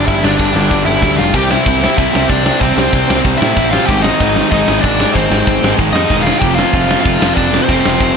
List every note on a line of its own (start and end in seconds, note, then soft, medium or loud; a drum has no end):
0.05 0.21 G1 loud
0.05 0.19 G2 medium
0.05 0.21 D3 medium
0.05 0.21 G3 loud
0.05 0.22 E4 medium
0.05 0.25 E5 medium
0.05 kick loud
0.05 ride medium
0.20 0.37 G1 loud
0.20 0.37 G2 medium
0.20 0.36 D3 medium
0.20 0.35 G3 medium
0.20 snare loud
0.25 0.84 D4 medium
0.25 0.85 D5 medium
0.37 0.53 G1 loud
0.37 0.51 G2 medium
0.37 0.51 D3 loud
0.37 0.52 G3 loud
0.37 kick loud
0.37 ride medium
0.52 0.69 G1 medium
0.52 0.70 G2 medium
0.52 0.69 D3 loud
0.52 0.69 G3 medium
0.56 0.70 D3 medium
0.56 snare loud
0.70 0.85 G1 medium
0.70 0.85 G2 medium
0.70 0.86 D3 medium
0.70 0.86 G3 medium
0.70 kick loud
0.70 snare medium
0.85 1.00 G1 medium
0.85 1.03 G2 medium
0.85 1.02 D3 loud
0.85 1.02 G3 medium
0.85 1.16 E4 medium
0.85 1.19 E5 loud
0.85 snare medium
1.02 1.16 D2 medium
1.02 1.17 G2 medium
1.02 1.18 D3 loud
1.02 1.18 G3 loud
1.02 kick loud
1.02 snare medium
1.18 1.33 F1 loud
1.18 1.33 G2 medium
1.18 1.33 D3 medium
1.18 1.32 G3 medium
1.18 1.33 F4 medium
1.18 1.34 F5 medium
1.18 snare medium
1.33 1.55 C2 medium
1.33 1.52 C3 loud
1.33 1.51 G3 loud
1.33 1.50 C4 loud
1.33 1.50 G4 medium
1.33 1.51 G5 loud
1.33 kick loud
1.33 crash loud
1.33 crash medium
1.50 1.66 C3 medium
1.50 1.67 G3 medium
1.50 1.67 C4 loud
1.50 1.95 E4 medium
1.50 1.96 E5 loud
1.50 snare loud
1.66 1.87 C2 medium
1.66 1.82 C3 medium
1.66 1.82 G3 medium
1.66 1.82 C4 loud
1.66 kick loud
1.66 crash medium
1.82 1.95 C3 medium
1.82 1.96 G3 medium
1.82 1.97 C4 medium
1.82 snare loud
1.97 2.08 C2 medium
1.97 2.15 C3 loud
1.97 2.14 G3 medium
1.97 2.14 C4 loud
1.97 2.28 E4 medium
1.97 2.29 E5 loud
1.97 kick loud
1.97 crash medium
2.14 2.25 C2 medium
2.14 2.28 C3 medium
2.14 2.29 G3 medium
2.14 2.30 C4 medium
2.14 snare loud
2.29 2.50 C2 medium
2.29 2.46 C3 medium
2.29 2.45 G3 medium
2.29 2.45 C4 loud
2.29 2.60 D4 medium
2.29 2.59 D5 loud
2.29 kick loud
2.29 crash medium
2.45 2.61 C3 medium
2.45 2.62 G3 medium
2.45 2.62 C4 medium
2.45 snare loud
2.60 2.71 C2 loud
2.60 2.78 C3 loud
2.60 2.78 G3 loud
2.60 2.77 C4 loud
2.60 3.21 C4 medium
2.60 3.20 C5 loud
2.60 kick loud
2.60 crash medium
2.77 2.87 C2 loud
2.77 2.91 C3 medium
2.77 2.93 G3 loud
2.77 2.94 C4 loud
2.77 snare loud
2.93 3.03 C2 loud
2.93 3.09 C3 loud
2.93 3.09 G3 medium
2.93 3.09 C4 medium
2.93 kick loud
2.93 crash medium
3.09 3.20 C2 medium
3.09 3.24 C3 medium
3.09 3.24 G3 medium
3.09 3.26 C4 loud
3.09 snare loud
3.24 3.35 C2 medium
3.24 3.42 C3 medium
3.24 3.41 G3 loud
3.24 3.41 C4 loud
3.24 kick loud
3.24 crash medium
3.38 3.51 A2 medium
3.38 3.59 C4 medium
3.38 3.70 E4 medium
3.38 3.72 E5 loud
3.42 3.57 C3 medium
3.42 3.57 G3 medium
3.42 snare loud
3.56 3.77 A1 medium
3.56 3.75 C3 medium
3.56 3.74 G3 medium
3.56 3.74 C4 loud
3.56 kick loud
3.56 crash medium
3.70 7.24 C4 loud
3.70 3.88 F4 medium
3.70 3.85 F5 loud
3.70 snare loud
3.75 3.89 C3 medium
3.75 3.89 G3 medium
3.85 4.09 G#1 loud
3.85 4.02 G5 loud
3.85 kick loud
3.85 crash medium
3.90 4.08 G#2 loud
3.90 4.07 D#3 loud
3.90 4.07 G#3 loud
3.90 4.04 G4 medium
4.02 4.49 D#4 medium
4.02 4.50 D#5 loud
4.02 snare loud
4.08 4.21 G#2 medium
4.08 4.21 D#3 loud
4.08 4.22 G#3 loud
4.20 4.41 G#1 medium
4.20 4.37 G#2 medium
4.20 4.36 D#3 loud
4.20 4.36 G#3 loud
4.20 kick loud
4.20 crash medium
4.36 4.50 G#2 medium
4.36 4.51 D#3 medium
4.36 4.52 G#3 medium
4.36 snare loud
4.51 4.62 G#1 medium
4.51 4.69 G#2 loud
4.51 4.68 D#3 medium
4.51 4.67 G#3 loud
4.51 4.83 D#4 medium
4.51 4.81 D#5 loud
4.51 kick loud
4.51 crash medium
4.68 4.78 G#1 medium
4.68 4.84 G#2 medium
4.68 4.84 D#3 medium
4.68 4.85 G#3 medium
4.68 snare loud
4.81 5.04 G#1 medium
4.81 5.14 D4 medium
4.81 5.15 D5 loud
4.81 kick loud
4.81 crash medium
4.85 4.99 G#2 medium
4.85 4.98 D#3 loud
4.85 4.98 G#3 loud
4.99 5.13 G#2 medium
4.99 5.14 D#3 medium
4.99 5.15 G#3 loud
4.99 snare loud
5.13 5.26 G#1 loud
5.13 5.28 G#2 loud
5.13 5.29 D#3 loud
5.13 5.28 G#3 loud
5.13 5.74 C5 loud
5.13 kick loud
5.13 crash medium
5.17 5.76 C4 medium
5.29 5.41 G#1 loud
5.29 5.44 G#2 medium
5.29 5.45 D#3 loud
5.29 5.46 G#3 medium
5.29 snare loud
5.46 5.58 G#1 loud
5.46 5.62 G#2 medium
5.46 5.62 D#3 loud
5.46 5.61 G#3 medium
5.46 kick loud
5.46 crash medium
5.62 5.73 G#1 medium
5.62 5.76 G#2 medium
5.62 5.77 D#3 medium
5.62 5.77 G#3 loud
5.62 snare loud
5.77 5.89 G#1 medium
5.77 5.93 G#2 medium
5.77 5.93 D#3 loud
5.77 5.92 G#3 medium
5.77 kick loud
5.77 crash medium
5.93 6.03 F2 medium
5.93 6.09 G#2 medium
5.93 6.10 D#3 medium
5.93 6.10 G#3 loud
5.93 6.25 D#4 medium
5.93 6.22 D#5 loud
5.93 snare loud
6.10 6.31 E1 medium
6.10 6.25 G#2 medium
6.10 6.25 D#3 loud
6.10 6.25 G#3 medium
6.10 kick loud
6.10 crash medium
6.22 6.41 D#3 medium
6.22 6.41 G#3 loud
6.22 6.41 F4 medium
6.22 6.39 F5 medium
6.27 6.41 G#2 medium
6.27 snare loud
6.39 6.63 F1 loud
6.39 6.59 F2 loud
6.39 6.57 C3 loud
6.39 6.57 F3 loud
6.39 6.57 G4 medium
6.39 6.55 G5 loud
6.39 kick loud
6.39 crash medium
6.55 6.72 C3 medium
6.55 6.74 F3 loud
6.55 7.02 F4 medium
6.55 6.99 F5 loud
6.55 snare loud
6.59 6.73 F2 medium
6.73 6.94 F1 loud
6.73 6.88 F2 medium
6.73 6.87 C3 medium
6.73 6.88 F3 medium
6.73 kick loud
6.73 crash medium
6.88 7.02 F2 medium
6.88 7.02 C3 medium
6.88 7.04 F3 medium
6.88 snare loud
7.01 7.19 F2 medium
7.01 7.18 C3 medium
7.01 7.19 F3 medium
7.01 7.34 F4 medium
7.01 7.36 F5 loud
7.06 7.16 F1 loud
7.06 kick loud
7.06 crash medium
7.19 7.31 F1 medium
7.19 7.35 F2 medium
7.19 7.36 C3 medium
7.19 7.37 F3 medium
7.19 snare loud
7.34 7.58 F1 medium
7.34 7.52 F2 medium
7.34 7.52 C3 medium
7.34 7.52 F3 medium
7.34 7.60 D4 medium
7.34 7.61 D5 loud
7.34 kick loud
7.34 crash medium
7.52 7.66 F2 medium
7.52 7.67 C3 medium
7.52 7.69 F3 loud
7.52 snare loud
7.62 7.64 B4 medium
7.62 8.17 C5 loud
7.67 7.79 F1 loud
7.67 7.84 F2 medium
7.67 7.84 C3 loud
7.67 7.84 F3 loud
7.67 8.17 C4 medium
7.67 kick loud
7.67 crash medium
7.85 7.96 F1 loud
7.85 7.99 F2 medium
7.85 8.00 C3 medium
7.85 8.01 F3 medium
7.85 snare loud
8.00 8.11 F1 loud
8.00 8.16 F2 medium
8.00 8.15 C3 medium
8.00 8.16 F3 medium
8.00 kick loud
8.00 crash medium